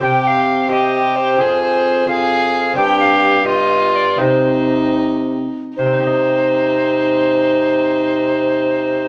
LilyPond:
<<
  \new Staff \with { instrumentName = "Recorder" } { \time 6/8 \key c \minor \tempo 4. = 80 g''8 f''4 ees''4 c''8~ | c''8 c''4 f''4. | g''8 f''4 ees''4 d''8 | c''4. r4. |
c''2.~ | c''2. | }
  \new Staff \with { instrumentName = "Violin" } { \time 6/8 \key c \minor g'4. g'4. | aes'4. aes'4. | g'4. f'4. | ees'2~ ees'8 r8 |
ees'2.~ | ees'2. | }
  \new Staff \with { instrumentName = "Lute" } { \time 6/8 \key c \minor <c' g' c''>4. <c' g' c''>4. | <c' f' aes'>4. <c' f' aes'>4. | <c' d' g'>4. <b f' g'>4. | <c' ees' g'>2. |
<c c' ees' g' ees''>2.~ | <c c' ees' g' ees''>2. | }
  \new Staff \with { instrumentName = "Lute" } { \clef bass \time 6/8 \key c \minor c2. | f,2. | g,2. | c2~ c8 r8 |
r2. | r2. | }
  \new Staff \with { instrumentName = "Bassoon" } { \clef bass \time 6/8 \key c \minor c2. | f,2. | g,2. | c2~ c8 r8 |
c2.~ | c2. | }
>>